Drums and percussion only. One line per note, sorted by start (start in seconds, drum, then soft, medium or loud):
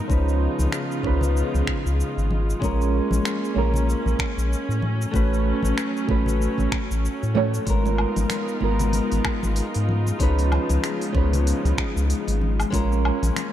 0.10 kick loud
0.10 cabasa medium
0.29 cabasa soft
0.59 high conga medium
0.59 cabasa medium
0.72 finger snap medium
0.72 cabasa medium
0.92 cabasa soft
1.03 kick loud
1.03 low conga medium
1.21 low conga medium
1.21 cabasa medium
1.37 cabasa medium
1.54 high conga medium
1.54 cabasa soft
1.67 finger snap medium
1.67 kick loud
1.87 cabasa medium
2.00 cabasa medium
2.19 cabasa soft
2.31 high conga medium
2.50 cabasa medium
2.62 kick loud
2.62 cabasa medium
2.81 cabasa soft
3.11 high conga loud
3.11 cabasa medium
3.25 finger snap medium
3.25 cabasa medium
3.45 cabasa soft
3.57 low conga medium
3.74 low conga loud
3.74 cabasa medium
3.90 cabasa medium
4.06 high conga medium
4.06 cabasa soft
4.19 finger snap medium
4.19 kick loud
4.39 cabasa medium
4.53 cabasa medium
4.71 cabasa soft
4.82 high conga medium
5.02 cabasa medium
5.14 kick loud
5.14 cabasa medium
5.34 cabasa soft
5.63 high conga loud
5.63 cabasa medium
5.78 finger snap medium
5.78 cabasa medium
5.97 cabasa soft
6.09 kick loud
6.09 low conga medium
6.26 low conga medium
6.26 cabasa medium
6.42 cabasa medium
6.58 high conga medium
6.58 low conga medium
6.58 cabasa soft
6.72 finger snap medium
6.72 kick loud
6.91 cabasa medium
7.05 cabasa medium
7.23 cabasa soft
7.35 high conga medium
7.54 cabasa medium
7.67 kick loud
7.67 open hi-hat medium
7.67 cabasa medium
7.85 muted conga soft
7.85 cabasa soft
7.98 low woodblock medium
8.16 open hi-hat soft
8.16 high conga medium
8.16 cabasa medium
8.30 finger snap medium
8.30 open hi-hat medium
8.30 muted conga medium
8.30 cabasa medium
8.48 cabasa soft
8.61 low conga medium
8.79 open hi-hat soft
8.79 low conga medium
8.79 cabasa medium
8.93 open hi-hat medium
8.93 muted conga soft
8.93 cabasa soft
9.12 open hi-hat soft
9.12 high conga medium
9.12 cabasa soft
9.25 finger snap medium
9.25 kick loud
9.25 low woodblock medium
9.43 muted conga medium
9.43 cabasa medium
9.56 open hi-hat medium
9.56 cabasa medium
9.74 open hi-hat soft
9.74 cabasa soft
9.89 high conga medium
10.06 muted conga soft
10.06 cabasa medium
10.20 kick loud
10.20 open hi-hat medium
10.20 cabasa soft
10.39 open hi-hat soft
10.39 cabasa soft
10.52 muted conga medium
10.52 low woodblock medium
10.69 open hi-hat soft
10.69 high conga medium
10.69 cabasa medium
10.84 finger snap medium
10.84 open hi-hat medium
10.84 cabasa medium
11.01 open hi-hat soft
11.01 cabasa soft
11.15 kick medium
11.15 muted conga soft
11.15 low conga medium
11.33 open hi-hat soft
11.33 low conga medium
11.33 cabasa medium
11.47 open hi-hat medium
11.47 cabasa soft
11.65 open hi-hat soft
11.65 muted conga medium
11.65 high conga medium
11.65 cabasa soft
11.78 finger snap medium
11.78 kick medium
11.97 cabasa medium
12.10 open hi-hat medium
12.10 cabasa medium
12.28 open hi-hat soft
12.28 muted conga soft
12.28 cabasa soft
12.41 high conga medium
12.60 open hi-hat soft
12.60 cabasa medium
12.60 low woodblock medium
12.72 kick loud
12.72 open hi-hat medium
12.72 muted conga medium
12.72 cabasa soft
12.92 cabasa soft
13.05 low woodblock medium
13.23 open hi-hat soft
13.23 high conga medium
13.23 cabasa medium
13.36 finger snap medium
13.36 open hi-hat medium
13.36 muted conga soft
13.36 cabasa soft